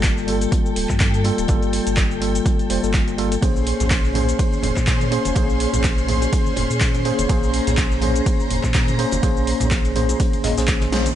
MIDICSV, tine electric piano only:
0, 0, Header, 1, 2, 480
1, 0, Start_track
1, 0, Tempo, 483871
1, 1477, Time_signature, 4, 2, 24, 8
1, 11062, End_track
2, 0, Start_track
2, 0, Title_t, "Tine electric piano"
2, 0, Program_c, 0, 4
2, 0, Note_on_c, 0, 55, 91
2, 0, Note_on_c, 0, 58, 82
2, 0, Note_on_c, 0, 65, 82
2, 0, Note_on_c, 0, 69, 96
2, 247, Note_off_c, 0, 55, 0
2, 250, Note_off_c, 0, 58, 0
2, 254, Note_off_c, 0, 65, 0
2, 257, Note_off_c, 0, 69, 0
2, 266, Note_on_c, 0, 55, 83
2, 274, Note_on_c, 0, 58, 77
2, 281, Note_on_c, 0, 65, 75
2, 288, Note_on_c, 0, 69, 92
2, 1206, Note_off_c, 0, 55, 0
2, 1210, Note_off_c, 0, 58, 0
2, 1214, Note_off_c, 0, 65, 0
2, 1217, Note_off_c, 0, 69, 0
2, 1231, Note_on_c, 0, 55, 89
2, 1235, Note_on_c, 0, 58, 81
2, 1239, Note_on_c, 0, 65, 81
2, 1242, Note_on_c, 0, 69, 100
2, 1449, Note_off_c, 0, 55, 0
2, 1451, Note_off_c, 0, 58, 0
2, 1453, Note_off_c, 0, 65, 0
2, 1454, Note_off_c, 0, 69, 0
2, 1466, Note_on_c, 0, 55, 90
2, 1473, Note_on_c, 0, 58, 82
2, 1480, Note_on_c, 0, 65, 83
2, 1488, Note_on_c, 0, 69, 101
2, 2166, Note_off_c, 0, 55, 0
2, 2170, Note_off_c, 0, 58, 0
2, 2173, Note_off_c, 0, 65, 0
2, 2177, Note_off_c, 0, 69, 0
2, 2191, Note_on_c, 0, 55, 82
2, 2195, Note_on_c, 0, 58, 74
2, 2199, Note_on_c, 0, 65, 73
2, 2202, Note_on_c, 0, 69, 91
2, 2653, Note_off_c, 0, 55, 0
2, 2655, Note_off_c, 0, 58, 0
2, 2657, Note_off_c, 0, 65, 0
2, 2659, Note_off_c, 0, 69, 0
2, 2673, Note_on_c, 0, 55, 84
2, 2676, Note_on_c, 0, 58, 80
2, 2680, Note_on_c, 0, 65, 80
2, 2683, Note_on_c, 0, 72, 98
2, 2777, Note_off_c, 0, 55, 0
2, 2779, Note_off_c, 0, 58, 0
2, 2780, Note_off_c, 0, 65, 0
2, 2782, Note_off_c, 0, 72, 0
2, 2806, Note_on_c, 0, 55, 77
2, 2810, Note_on_c, 0, 58, 71
2, 2813, Note_on_c, 0, 65, 72
2, 2817, Note_on_c, 0, 69, 84
2, 3129, Note_off_c, 0, 55, 0
2, 3131, Note_off_c, 0, 58, 0
2, 3133, Note_off_c, 0, 65, 0
2, 3135, Note_off_c, 0, 69, 0
2, 3152, Note_on_c, 0, 55, 91
2, 3156, Note_on_c, 0, 58, 88
2, 3159, Note_on_c, 0, 65, 86
2, 3163, Note_on_c, 0, 69, 103
2, 3314, Note_off_c, 0, 55, 0
2, 3316, Note_off_c, 0, 58, 0
2, 3318, Note_off_c, 0, 65, 0
2, 3320, Note_off_c, 0, 69, 0
2, 3386, Note_on_c, 0, 58, 90
2, 3393, Note_on_c, 0, 61, 83
2, 3400, Note_on_c, 0, 68, 82
2, 3407, Note_on_c, 0, 72, 98
2, 4086, Note_off_c, 0, 58, 0
2, 4090, Note_off_c, 0, 61, 0
2, 4093, Note_off_c, 0, 68, 0
2, 4097, Note_off_c, 0, 72, 0
2, 4105, Note_on_c, 0, 58, 83
2, 4113, Note_on_c, 0, 61, 74
2, 4120, Note_on_c, 0, 68, 73
2, 4127, Note_on_c, 0, 72, 93
2, 5046, Note_off_c, 0, 58, 0
2, 5050, Note_off_c, 0, 61, 0
2, 5053, Note_off_c, 0, 68, 0
2, 5057, Note_off_c, 0, 72, 0
2, 5071, Note_on_c, 0, 58, 90
2, 5075, Note_on_c, 0, 61, 83
2, 5079, Note_on_c, 0, 68, 80
2, 5082, Note_on_c, 0, 72, 99
2, 5289, Note_off_c, 0, 58, 0
2, 5291, Note_off_c, 0, 61, 0
2, 5293, Note_off_c, 0, 68, 0
2, 5295, Note_off_c, 0, 72, 0
2, 5306, Note_on_c, 0, 58, 91
2, 5313, Note_on_c, 0, 61, 80
2, 5321, Note_on_c, 0, 68, 82
2, 5328, Note_on_c, 0, 72, 98
2, 6006, Note_off_c, 0, 58, 0
2, 6010, Note_off_c, 0, 61, 0
2, 6014, Note_off_c, 0, 68, 0
2, 6017, Note_off_c, 0, 72, 0
2, 6026, Note_on_c, 0, 58, 82
2, 6033, Note_on_c, 0, 61, 77
2, 6040, Note_on_c, 0, 68, 77
2, 6048, Note_on_c, 0, 72, 91
2, 6966, Note_off_c, 0, 58, 0
2, 6970, Note_off_c, 0, 61, 0
2, 6973, Note_off_c, 0, 68, 0
2, 6977, Note_off_c, 0, 72, 0
2, 6991, Note_on_c, 0, 58, 91
2, 6994, Note_on_c, 0, 61, 84
2, 6998, Note_on_c, 0, 68, 83
2, 7002, Note_on_c, 0, 72, 100
2, 7209, Note_off_c, 0, 58, 0
2, 7211, Note_off_c, 0, 61, 0
2, 7212, Note_off_c, 0, 68, 0
2, 7214, Note_off_c, 0, 72, 0
2, 7226, Note_on_c, 0, 58, 92
2, 7233, Note_on_c, 0, 61, 83
2, 7240, Note_on_c, 0, 68, 84
2, 7248, Note_on_c, 0, 72, 97
2, 7926, Note_off_c, 0, 58, 0
2, 7930, Note_off_c, 0, 61, 0
2, 7933, Note_off_c, 0, 68, 0
2, 7937, Note_off_c, 0, 72, 0
2, 7946, Note_on_c, 0, 58, 84
2, 7953, Note_on_c, 0, 61, 75
2, 7960, Note_on_c, 0, 68, 75
2, 7968, Note_on_c, 0, 72, 92
2, 8886, Note_off_c, 0, 58, 0
2, 8890, Note_off_c, 0, 61, 0
2, 8893, Note_off_c, 0, 68, 0
2, 8897, Note_off_c, 0, 72, 0
2, 8911, Note_on_c, 0, 58, 93
2, 8914, Note_on_c, 0, 61, 83
2, 8918, Note_on_c, 0, 68, 82
2, 8922, Note_on_c, 0, 72, 101
2, 9129, Note_off_c, 0, 58, 0
2, 9130, Note_off_c, 0, 61, 0
2, 9132, Note_off_c, 0, 68, 0
2, 9134, Note_off_c, 0, 72, 0
2, 9146, Note_on_c, 0, 58, 89
2, 9153, Note_on_c, 0, 61, 80
2, 9161, Note_on_c, 0, 68, 80
2, 9168, Note_on_c, 0, 72, 99
2, 9846, Note_off_c, 0, 58, 0
2, 9850, Note_off_c, 0, 61, 0
2, 9854, Note_off_c, 0, 68, 0
2, 9858, Note_off_c, 0, 72, 0
2, 9872, Note_on_c, 0, 58, 82
2, 9876, Note_on_c, 0, 61, 75
2, 9880, Note_on_c, 0, 68, 76
2, 9883, Note_on_c, 0, 72, 91
2, 10334, Note_off_c, 0, 58, 0
2, 10335, Note_off_c, 0, 61, 0
2, 10337, Note_off_c, 0, 68, 0
2, 10339, Note_off_c, 0, 72, 0
2, 10352, Note_on_c, 0, 58, 87
2, 10356, Note_on_c, 0, 61, 78
2, 10359, Note_on_c, 0, 68, 79
2, 10363, Note_on_c, 0, 75, 94
2, 10456, Note_off_c, 0, 58, 0
2, 10458, Note_off_c, 0, 61, 0
2, 10460, Note_off_c, 0, 68, 0
2, 10462, Note_off_c, 0, 75, 0
2, 10487, Note_on_c, 0, 58, 77
2, 10490, Note_on_c, 0, 61, 70
2, 10494, Note_on_c, 0, 68, 72
2, 10497, Note_on_c, 0, 72, 87
2, 10810, Note_off_c, 0, 58, 0
2, 10812, Note_off_c, 0, 61, 0
2, 10813, Note_off_c, 0, 68, 0
2, 10815, Note_off_c, 0, 72, 0
2, 10832, Note_on_c, 0, 58, 94
2, 10836, Note_on_c, 0, 61, 88
2, 10840, Note_on_c, 0, 68, 85
2, 10844, Note_on_c, 0, 72, 104
2, 10994, Note_off_c, 0, 58, 0
2, 10996, Note_off_c, 0, 61, 0
2, 10998, Note_off_c, 0, 68, 0
2, 11000, Note_off_c, 0, 72, 0
2, 11062, End_track
0, 0, End_of_file